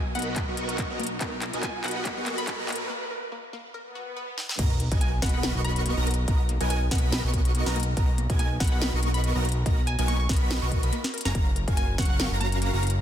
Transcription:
Already playing: B1 G#5, riser
0.15 B1 A#3 B3 F#4 A#4 D#5 F#5 B5, closed hi-hat
0.19 closed hi-hat
0.22 closed hi-hat
0.36 A#3, kick, clap, closed hi-hat
0.48 B1 B3 F#4 A#4 D#5 C#6
0.57 A#4, closed hi-hat
0.69 closed hi-hat
0.78 A#3, kick, clap, closed hi-hat
0.90 B1 B3 F#4 A#4 D#5 A#5
1.00 A#3, closed hi-hat
1.03 closed hi-hat
1.07 closed hi-hat
1.21 B1 B3 F#4 A#4 D#5 A#5, kick, clap, closed hi-hat
1.42 A#3, clap, closed hi-hat
1.53 B1 B3 F#4 A#4 D#5 G#5, closed hi-hat
1.63 A#3 G#5, kick, clap, closed hi-hat
1.84 B1 B3 F#4 A#4 D#5 F#5 B5, clap, closed hi-hat
1.88 closed hi-hat
1.91 closed hi-hat
1.96 F#5
2.05 A#3, kick, clap, closed hi-hat
2.17 B1 B3 F#4 A#4 D#5 C#6
2.26 A#3, clap, closed hi-hat
2.38 B5, closed hi-hat
2.47 A#4, kick, clap, closed hi-hat
2.59 B1 B3 F#4 A#4 D#5 A#5
2.69 A#3, clap, closed hi-hat
2.72 closed hi-hat
2.76 closed hi-hat
2.90 A#3
3.11 A#4
3.32 A#3
3.53 A#3
3.74 A#4, swell
3.95 F#4
4.17 B4
4.38 D#4, snare
4.49 snare
4.59 B1 A#3 B3 F#4 A#4 D#5 A#5, kick, closed hi-hat, crash, sub drop
4.80 A#4, closed hi-hat
4.91 B1 B3 F#4 A#4 D#5 G#5, kick, closed hi-hat
5.01 A#3 G#5, closed hi-hat
5.22 B1 A#3 B3 F#4 A#4 D#5 F#5 B5, kick, snare, closed hi-hat
5.26 closed hi-hat
5.29 closed hi-hat
5.34 F#5
5.43 A#4, snare, closed hi-hat
5.55 B1 B3 F#4 A#4 D#5 C#6
5.65 A#3 B5, closed hi-hat
5.76 closed hi-hat
5.86 A#3, closed hi-hat
5.97 B1 B3 F#4 A#4 D#5 A#5
6.07 A#4, closed hi-hat
6.11 closed hi-hat
6.14 closed hi-hat
6.28 B1 A#3 B3 F#4 A#4 D#5 A#5, kick, closed hi-hat
6.49 A#3, closed hi-hat
6.60 B1 B3 F#4 A#4 D#5 G#5, closed hi-hat
6.70 A#4 G#5, closed hi-hat
6.91 B1 A#3 B3 F#4 A#4 D#5 F#5 B5, kick, snare, closed hi-hat
6.95 closed hi-hat
6.98 closed hi-hat
7.12 A#3, snare, closed hi-hat
7.24 B1 B3 F#4 A#4 D#5 C#6
7.34 A#4, kick, closed hi-hat
7.45 closed hi-hat
7.55 A#3, closed hi-hat
7.66 B1 B3 F#4 A#4 D#5 A#5, snare
7.76 A#3, closed hi-hat
7.80 closed hi-hat
7.83 closed hi-hat
7.97 B1 B3 F#4 A#4 D#5 A#5, kick, closed hi-hat
8.18 A#3, closed hi-hat
8.30 B1 B3 F#4 A#4 D#5 G#5, kick, closed hi-hat
8.39 A#3 G#5, closed hi-hat
8.60 B1 B3 F#4 A#4 D#5 F#5 B5, kick, snare, closed hi-hat
8.64 closed hi-hat
8.67 closed hi-hat
8.72 F#5
8.82 A#3, snare, closed hi-hat
8.93 B1 B3 F#4 A#4 D#5 C#6
9.03 A#3, closed hi-hat
9.14 B5, closed hi-hat
9.24 A#4, closed hi-hat
9.35 B1 B3 F#4 A#4 D#5 A#5
9.45 A#3, closed hi-hat
9.49 closed hi-hat
9.52 closed hi-hat
9.66 B1 A#3 B3 F#4 A#4 D#5 A#5, kick, closed hi-hat
9.87 A#4 G#5, closed hi-hat
9.99 B1 B3 F#4 A#4 D#5 G#5, closed hi-hat
10.08 A#3 C#6, closed hi-hat
10.20 C#6
10.29 B1 A#3 B3 F#4 A#4 D#5 B5, kick, snare, closed hi-hat
10.33 closed hi-hat
10.37 closed hi-hat
10.50 A#4, snare, closed hi-hat
10.62 B1 B3 F#4 A#4 D#5 C#6
10.72 A#3, kick, closed hi-hat
10.83 B1 B3 F#4 A#4 D#5 B5, closed hi-hat
10.93 A#3, closed hi-hat
11.04 snare
11.14 A#4, closed hi-hat
11.18 closed hi-hat
11.21 closed hi-hat
11.25 F#1 C#4 F#4 A#4 F5 G#5 A#5, snare
11.35 F#1 A#3 C#4 F#4 A#4 F5 A#5, kick, closed hi-hat
11.56 A#4, closed hi-hat
11.68 F#1 C#4 F#4 A#4 F5 G#5, kick, closed hi-hat
11.77 A#3 G#5, closed hi-hat
11.98 F#1 A#3 C#4 F#4 A#4 F5 F#5 C#6, kick, snare, closed hi-hat
12.02 closed hi-hat
12.05 closed hi-hat
12.10 F#5
12.19 A#4, snare, closed hi-hat
12.31 F#1 C#4 F#4 A#4 F5 A#5
12.40 A#3 A#5, closed hi-hat
12.52 closed hi-hat
12.62 A#3, closed hi-hat
12.73 F#1 C#4 F#4 A#4 F5 A#5
12.83 A#4, closed hi-hat
12.87 closed hi-hat
12.90 closed hi-hat

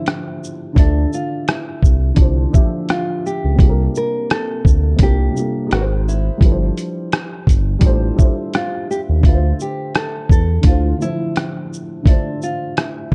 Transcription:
Already playing: D3 F3 D4 E4 F4 G4 C5
0.06 cross-stick, closed hi-hat
0.44 shaker
0.73 D3 D4 E5, kick
0.77 D2 D4 F4 A4, closed hi-hat
1.13 F4, shaker
1.48 E4, cross-stick, closed hi-hat
1.83 C2, kick, shaker
2.14 C2 D3 D4 E4, kick, closed hi-hat
2.20 F4 C5
2.49 D3 D4 E5
2.54 F3 G4, kick, shaker
2.89 F4, cross-stick, closed hi-hat
3.26 G4, shaker
3.44 C#2
3.55 C3 G3 A#3, kick
3.59 C2 D4 F4 G#4, closed hi-hat
3.69 A#4
3.95 A#4, shaker
4.30 A4, cross-stick, closed hi-hat
4.65 D2, kick, shaker
4.96 C2 C3 G3 A#3, kick, closed hi-hat
5.01 D4 F4 G4 A#4
5.31 C3 G3 A#3
5.36 D4 F4 A4, shaker
5.67 G#3 D#4 F#4
5.71 G#1 F#4 A#4 B4, cross-stick, closed hi-hat
5.81 C5
6.08 E4, shaker
6.37 G3 D4 E4, kick
6.42 G1 F3 A4 B4, closed hi-hat
6.52 C5
6.78 closed hi-hat, shaker
7.12 cross-stick, closed hi-hat
7.47 G1, kick, closed hi-hat, shaker
7.79 A1 G3 D4 E4, kick, closed hi-hat
7.83 F4 A4 C5
8.15 G3 D4 E5
8.19 F4 A4 C5, kick, shaker
8.54 F4, cross-stick, closed hi-hat
8.91 G4, shaker
9.09 D#2
9.20 D2 D3 A3 E5, kick
9.25 F4 B4, closed hi-hat
9.34 C5
9.60 G4, shaker
9.95 A4, cross-stick, closed hi-hat
10.29 E2 A4, kick, shaker
10.61 D2 D3 A3 E4, kick, closed hi-hat
10.67 F4 C5
10.97 D3 A3 E4
11.01 F3 E4 C5, shaker
11.36 cross-stick, closed hi-hat
11.73 shaker
12.03 D3 A3 E5, kick
12.07 D4 F4 C5, closed hi-hat
12.42 F4, shaker
12.77 E4, cross-stick, closed hi-hat

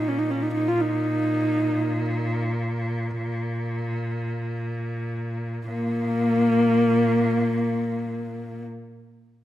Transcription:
Already playing: A#2
0.08 C#4
0.18 D#4
0.30 C#4
0.42 D#4
0.54 D#4
0.68 F4
0.81 D#4
5.66 A#2 A#3

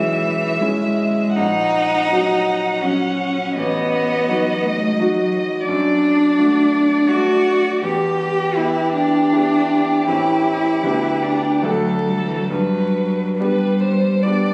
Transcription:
Already playing: B1 E3 G#3 C#4 E4 E5
0.59 G#3 C#4 E4
1.36 A#1 D#4 F#5
2.11 F#3 C#4 F#4
2.81 F#3 C#4 F#4
3.55 A1 B3 D#5
4.29 F#3 D#4 F#4
4.63 A3
4.91 G#3
4.97 F#3 D#4 F#4
5.65 F#2 D4 D5
6.38 A3 D4 F#4
7.08 A3 D4 F#4
7.82 E2 G4
8.55 B3 E4 G4
8.93 D4
9.32 B3 E4 G4
10.07 A1 C4 E4 G4
10.83 D2 B3 D4 G4
11.23 D4
11.62 D2 F#3 A3 D4 A4
12.06 G3
12.15 F#3
12.27 E3
12.36 F#3
12.48 G2 F#3 B4
13.37 G3 B3 D4 B4
13.41 G4
13.81 C5
14.23 B3 D4 G4 D5

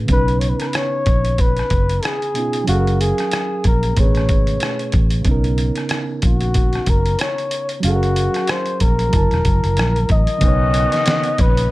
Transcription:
Already playing: B2 A3 C#4 G#4 B4
0.05 C#3 B3, kick, closed hi-hat
0.09 B1 C#4 D#4 B4
0.14 B4
0.28 closed hi-hat
0.40 C#5, closed hi-hat
0.49 B4
0.59 A#4, cross-stick, closed hi-hat
0.67 B4
0.73 C#5, cross-stick, closed hi-hat
1.06 A#1, kick, closed hi-hat
1.25 closed hi-hat
1.38 B4, kick, closed hi-hat
1.57 cross-stick, closed hi-hat
1.70 F#1, kick, closed hi-hat
1.90 closed hi-hat
2.03 G#4, cross-stick, closed hi-hat
2.22 closed hi-hat
2.34 B2 B3 C#4 D#4, closed hi-hat
2.39 F4
2.53 closed hi-hat
2.64 F#3 C#4, closed hi-hat
2.68 F#1 F#4 G#4 F5
2.73 A4
2.80 A#4
2.87 closed hi-hat
3.01 G#4, closed hi-hat
3.18 cross-stick, closed hi-hat
3.31 cross-stick, closed hi-hat
3.64 A#1 A#4, kick, closed hi-hat
3.83 closed hi-hat
3.93 B2 A3, closed hi-hat
3.97 A1 C4 G#4 C#5, kick
4.03 C#4 B4
4.15 cross-stick, closed hi-hat
4.29 G#1, kick, closed hi-hat
4.47 closed hi-hat
4.60 cross-stick, closed hi-hat
4.79 closed hi-hat
4.92 A1, kick, closed hi-hat
5.10 closed hi-hat
5.22 B1 C#3 B3, kick, closed hi-hat
5.27 C#4 D#4
5.31 A#4
5.44 closed hi-hat
5.58 closed hi-hat
5.76 cross-stick, closed hi-hat
5.89 cross-stick, closed hi-hat
6.22 A#1 F#4, kick, closed hi-hat
6.41 closed hi-hat
6.54 kick, closed hi-hat
6.73 cross-stick, closed hi-hat
6.86 F#1 A#4, kick, closed hi-hat
7.06 closed hi-hat
7.19 C#5, cross-stick, closed hi-hat
7.38 closed hi-hat
7.51 closed hi-hat
7.69 closed hi-hat
7.80 F#1 F#3 C#4, closed hi-hat
7.85 F#4 G#4 F5
7.90 A4
7.96 A#4
8.03 closed hi-hat
8.16 closed hi-hat
8.34 cross-stick, closed hi-hat
8.47 C5, cross-stick, closed hi-hat
8.66 closed hi-hat
8.80 A#1 A#4, kick, closed hi-hat
8.99 closed hi-hat
9.09 D3 F#3, closed hi-hat
9.13 F#1 E4 A5, kick
9.18 A#4
9.31 E1, cross-stick, closed hi-hat
9.45 F#1, kick, closed hi-hat
9.64 F#1, closed hi-hat
9.77 A#1, cross-stick, closed hi-hat
9.96 closed hi-hat
10.09 A1 D#5, kick, closed hi-hat
10.27 closed hi-hat
10.38 B1 C#3 D#3 B3 C#4 F#4, kick, closed hi-hat
10.42 C#4 D#4 B4
10.48 C#5
10.74 closed hi-hat
10.92 snare, closed hi-hat
11.06 snare, closed hi-hat
11.24 closed hi-hat
11.38 A#1 B4, kick, closed hi-hat
11.57 closed hi-hat

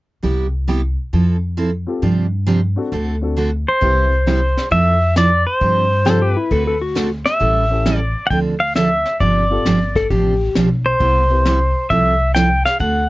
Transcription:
0.23 C2 C3 G3 B3 E4 G4
0.67 C3 G3 B3 E4 G4
1.13 F2 F3 C4 E4 A4
1.57 F3 C4 E4 A4
1.87 C4 F4 G4 A4
2.02 G2 C3 F3 C4 D4 G4
2.47 C3 F3 C4 D4 G4
2.76 C4 D4 F#4 A4
2.92 D2 D3 A3 C4 F#4 A4
3.21 C4 D4 F#4 A4
3.37 D3 A3 C4 F#4 A4
3.68 C5
3.81 C2 C3 G3 B3 C4 E4 G4 B4, brush sweep, kick
4.26 C3 G3 B3 E4 G4, snare, hi-hat pedal
4.57 snare
4.71 F2 F3 C4 E4 A4 E5, brush sweep, kick
5.16 F3 C4 E4 A4 D5, snare, hi-hat pedal
5.47 C5
5.60 G2 C3 F3 C4 D4 G4, brush sweep, kick
6.05 C3 F3 C4 D4 F4 G4 A4, snare, hi-hat pedal
6.22 G4
6.32 B4
6.37 E4
6.51 D2 D3 A3 C4 F#4 A4, brush sweep, kick
6.67 A4
6.81 F#4
6.95 D3 A3 C4 F#4 A4, snare, hi-hat pedal
7.26 E5, snare
7.39 A1 E3 G3 C#4 E4 A4, brush sweep, kick
7.70 C#4 E4 G4 A4
7.86 E3 G3 C#4 E4 A4, snare, hi-hat pedal
7.98 D5
8.27 D2 D3 F#5 G5, brush sweep, kick
8.31 F3 C4 D4 A4
8.60 F5
8.75 D3 F3 C4 D4 A4 E5, snare, hi-hat pedal
9.05 snare
9.20 G1 C3 F3 C4 D4 G4 D5, brush sweep, kick
9.50 C4 F4 G4 A4
9.65 G1 C3 F3 C4 D4 G4, snare, hi-hat pedal
9.96 A4, kick, snare
10.10 A1 C3 F3 C4 D4 G4, brush sweep, kick
10.55 B1 C3 F3 C4 D4 G4, snare, hi-hat pedal
10.86 C5
10.99 C2 C3 G3 B3 E4 G4, brush sweep, kick
11.30 C4 E4 G4 B4
11.45 C3 G3 B3 E4 G4, snare, hi-hat pedal
11.90 C2 C3 F3 C4 E4 A4 E5, brush sweep, kick
12.34 C3 F3 C4 E4 A4 G5, snare, hi-hat pedal
12.65 F5, snare
12.79 D2 D3 A3 C4 F#4 A4 F#5, brush sweep, kick

